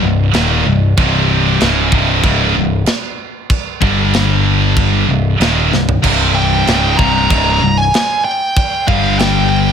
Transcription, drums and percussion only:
0, 0, Header, 1, 2, 480
1, 0, Start_track
1, 0, Key_signature, -3, "minor"
1, 0, Tempo, 632244
1, 737, Time_signature, 4, 2, 24, 8
1, 7382, End_track
2, 0, Start_track
2, 0, Title_t, "Drums"
2, 255, Note_on_c, 9, 52, 64
2, 264, Note_on_c, 9, 38, 118
2, 331, Note_off_c, 9, 52, 0
2, 340, Note_off_c, 9, 38, 0
2, 741, Note_on_c, 9, 36, 110
2, 741, Note_on_c, 9, 52, 64
2, 817, Note_off_c, 9, 36, 0
2, 817, Note_off_c, 9, 52, 0
2, 1218, Note_on_c, 9, 52, 61
2, 1227, Note_on_c, 9, 38, 107
2, 1294, Note_off_c, 9, 52, 0
2, 1303, Note_off_c, 9, 38, 0
2, 1458, Note_on_c, 9, 36, 106
2, 1534, Note_off_c, 9, 36, 0
2, 1695, Note_on_c, 9, 52, 62
2, 1697, Note_on_c, 9, 36, 105
2, 1771, Note_off_c, 9, 52, 0
2, 1773, Note_off_c, 9, 36, 0
2, 2173, Note_on_c, 9, 52, 69
2, 2182, Note_on_c, 9, 38, 127
2, 2249, Note_off_c, 9, 52, 0
2, 2258, Note_off_c, 9, 38, 0
2, 2657, Note_on_c, 9, 36, 103
2, 2661, Note_on_c, 9, 52, 62
2, 2733, Note_off_c, 9, 36, 0
2, 2736, Note_off_c, 9, 52, 0
2, 2898, Note_on_c, 9, 36, 105
2, 2974, Note_off_c, 9, 36, 0
2, 3140, Note_on_c, 9, 52, 59
2, 3149, Note_on_c, 9, 38, 110
2, 3216, Note_off_c, 9, 52, 0
2, 3225, Note_off_c, 9, 38, 0
2, 3619, Note_on_c, 9, 36, 113
2, 3625, Note_on_c, 9, 52, 60
2, 3695, Note_off_c, 9, 36, 0
2, 3701, Note_off_c, 9, 52, 0
2, 4105, Note_on_c, 9, 52, 63
2, 4114, Note_on_c, 9, 38, 124
2, 4181, Note_off_c, 9, 52, 0
2, 4190, Note_off_c, 9, 38, 0
2, 4354, Note_on_c, 9, 38, 63
2, 4429, Note_off_c, 9, 38, 0
2, 4469, Note_on_c, 9, 43, 95
2, 4545, Note_off_c, 9, 43, 0
2, 4584, Note_on_c, 9, 36, 110
2, 4588, Note_on_c, 9, 49, 98
2, 4588, Note_on_c, 9, 52, 60
2, 4660, Note_off_c, 9, 36, 0
2, 4664, Note_off_c, 9, 49, 0
2, 4664, Note_off_c, 9, 52, 0
2, 5067, Note_on_c, 9, 52, 62
2, 5076, Note_on_c, 9, 38, 117
2, 5143, Note_off_c, 9, 52, 0
2, 5152, Note_off_c, 9, 38, 0
2, 5306, Note_on_c, 9, 36, 102
2, 5382, Note_off_c, 9, 36, 0
2, 5546, Note_on_c, 9, 36, 111
2, 5552, Note_on_c, 9, 52, 65
2, 5621, Note_off_c, 9, 36, 0
2, 5628, Note_off_c, 9, 52, 0
2, 6027, Note_on_c, 9, 52, 63
2, 6036, Note_on_c, 9, 38, 113
2, 6103, Note_off_c, 9, 52, 0
2, 6112, Note_off_c, 9, 38, 0
2, 6503, Note_on_c, 9, 36, 114
2, 6504, Note_on_c, 9, 52, 62
2, 6579, Note_off_c, 9, 36, 0
2, 6580, Note_off_c, 9, 52, 0
2, 6742, Note_on_c, 9, 36, 104
2, 6818, Note_off_c, 9, 36, 0
2, 6980, Note_on_c, 9, 52, 63
2, 6989, Note_on_c, 9, 38, 114
2, 7056, Note_off_c, 9, 52, 0
2, 7065, Note_off_c, 9, 38, 0
2, 7382, End_track
0, 0, End_of_file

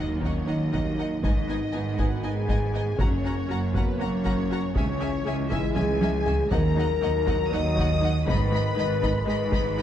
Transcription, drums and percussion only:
0, 0, Header, 1, 2, 480
1, 0, Start_track
1, 0, Tempo, 502513
1, 1179, Time_signature, 7, 3, 24, 8
1, 9383, End_track
2, 0, Start_track
2, 0, Title_t, "Taiko and cinematic ensemble drums"
2, 215, Note_on_c, 9, 41, 62
2, 311, Note_off_c, 9, 41, 0
2, 702, Note_on_c, 9, 41, 66
2, 797, Note_off_c, 9, 41, 0
2, 1180, Note_on_c, 9, 41, 74
2, 1276, Note_off_c, 9, 41, 0
2, 1898, Note_on_c, 9, 41, 68
2, 1994, Note_off_c, 9, 41, 0
2, 2376, Note_on_c, 9, 41, 67
2, 2472, Note_off_c, 9, 41, 0
2, 2852, Note_on_c, 9, 41, 75
2, 2948, Note_off_c, 9, 41, 0
2, 3578, Note_on_c, 9, 41, 67
2, 3674, Note_off_c, 9, 41, 0
2, 4061, Note_on_c, 9, 41, 63
2, 4157, Note_off_c, 9, 41, 0
2, 4545, Note_on_c, 9, 41, 78
2, 4640, Note_off_c, 9, 41, 0
2, 5270, Note_on_c, 9, 41, 75
2, 5366, Note_off_c, 9, 41, 0
2, 5512, Note_on_c, 9, 48, 71
2, 5608, Note_off_c, 9, 48, 0
2, 5744, Note_on_c, 9, 48, 73
2, 5839, Note_off_c, 9, 48, 0
2, 5987, Note_on_c, 9, 43, 71
2, 6083, Note_off_c, 9, 43, 0
2, 6221, Note_on_c, 9, 41, 86
2, 6317, Note_off_c, 9, 41, 0
2, 6947, Note_on_c, 9, 41, 79
2, 7043, Note_off_c, 9, 41, 0
2, 7426, Note_on_c, 9, 41, 68
2, 7522, Note_off_c, 9, 41, 0
2, 7906, Note_on_c, 9, 41, 90
2, 8001, Note_off_c, 9, 41, 0
2, 8621, Note_on_c, 9, 41, 73
2, 8717, Note_off_c, 9, 41, 0
2, 9096, Note_on_c, 9, 41, 77
2, 9191, Note_off_c, 9, 41, 0
2, 9383, End_track
0, 0, End_of_file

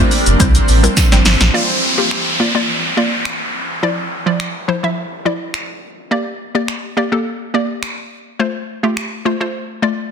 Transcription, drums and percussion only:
0, 0, Header, 1, 2, 480
1, 0, Start_track
1, 0, Tempo, 571429
1, 1295, Time_signature, 4, 2, 24, 8
1, 8497, End_track
2, 0, Start_track
2, 0, Title_t, "Drums"
2, 95, Note_on_c, 9, 46, 71
2, 95, Note_on_c, 9, 82, 47
2, 179, Note_off_c, 9, 46, 0
2, 179, Note_off_c, 9, 82, 0
2, 221, Note_on_c, 9, 42, 54
2, 221, Note_on_c, 9, 82, 72
2, 305, Note_off_c, 9, 42, 0
2, 305, Note_off_c, 9, 82, 0
2, 336, Note_on_c, 9, 36, 116
2, 337, Note_on_c, 9, 42, 83
2, 337, Note_on_c, 9, 82, 81
2, 420, Note_off_c, 9, 36, 0
2, 421, Note_off_c, 9, 42, 0
2, 421, Note_off_c, 9, 82, 0
2, 461, Note_on_c, 9, 42, 60
2, 461, Note_on_c, 9, 82, 58
2, 545, Note_off_c, 9, 42, 0
2, 545, Note_off_c, 9, 82, 0
2, 574, Note_on_c, 9, 46, 66
2, 574, Note_on_c, 9, 82, 46
2, 658, Note_off_c, 9, 46, 0
2, 658, Note_off_c, 9, 82, 0
2, 705, Note_on_c, 9, 42, 53
2, 705, Note_on_c, 9, 82, 76
2, 789, Note_off_c, 9, 42, 0
2, 789, Note_off_c, 9, 82, 0
2, 813, Note_on_c, 9, 42, 79
2, 813, Note_on_c, 9, 82, 81
2, 814, Note_on_c, 9, 36, 112
2, 815, Note_on_c, 9, 38, 64
2, 816, Note_on_c, 9, 54, 86
2, 897, Note_off_c, 9, 42, 0
2, 897, Note_off_c, 9, 82, 0
2, 898, Note_off_c, 9, 36, 0
2, 899, Note_off_c, 9, 38, 0
2, 900, Note_off_c, 9, 54, 0
2, 942, Note_on_c, 9, 38, 68
2, 942, Note_on_c, 9, 42, 56
2, 942, Note_on_c, 9, 82, 57
2, 1026, Note_off_c, 9, 38, 0
2, 1026, Note_off_c, 9, 42, 0
2, 1026, Note_off_c, 9, 82, 0
2, 1053, Note_on_c, 9, 46, 70
2, 1053, Note_on_c, 9, 82, 52
2, 1055, Note_on_c, 9, 38, 102
2, 1137, Note_off_c, 9, 46, 0
2, 1137, Note_off_c, 9, 82, 0
2, 1139, Note_off_c, 9, 38, 0
2, 1182, Note_on_c, 9, 38, 99
2, 1182, Note_on_c, 9, 42, 54
2, 1182, Note_on_c, 9, 82, 73
2, 1266, Note_off_c, 9, 38, 0
2, 1266, Note_off_c, 9, 42, 0
2, 1266, Note_off_c, 9, 82, 0
2, 1774, Note_on_c, 9, 26, 97
2, 1858, Note_off_c, 9, 26, 0
2, 2733, Note_on_c, 9, 26, 113
2, 2817, Note_off_c, 9, 26, 0
2, 3695, Note_on_c, 9, 26, 98
2, 3779, Note_off_c, 9, 26, 0
2, 4654, Note_on_c, 9, 26, 119
2, 4738, Note_off_c, 9, 26, 0
2, 5614, Note_on_c, 9, 26, 97
2, 5698, Note_off_c, 9, 26, 0
2, 6574, Note_on_c, 9, 26, 116
2, 6658, Note_off_c, 9, 26, 0
2, 7534, Note_on_c, 9, 26, 98
2, 7618, Note_off_c, 9, 26, 0
2, 8497, End_track
0, 0, End_of_file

